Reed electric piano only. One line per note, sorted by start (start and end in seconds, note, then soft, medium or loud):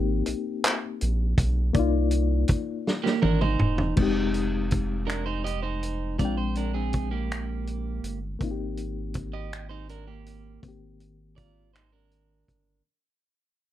0.00 1.70 A#3 medium
0.00 1.71 C4 medium
0.00 1.72 D#4 medium
0.00 1.76 G4 medium
1.73 3.92 A#3 medium
1.73 3.94 D#4 medium
1.73 3.93 D5 medium
1.79 3.95 F4 medium
3.96 6.15 G#3 medium
3.96 6.16 C4 medium
3.96 6.17 D#4 medium
4.03 6.18 G4 medium
6.19 8.37 G#3 medium
6.19 8.38 C4 medium
6.19 8.39 D4 medium
6.25 8.40 G5 medium
8.39 10.58 A#3 medium
8.39 10.59 C4 medium
8.39 10.60 D#4 medium
8.45 8.49 F4 medium
8.51 10.64 G4 medium
10.62 12.83 D#3 medium
10.62 12.81 A#3 medium
10.62 12.82 C4 medium
10.68 12.84 G4 medium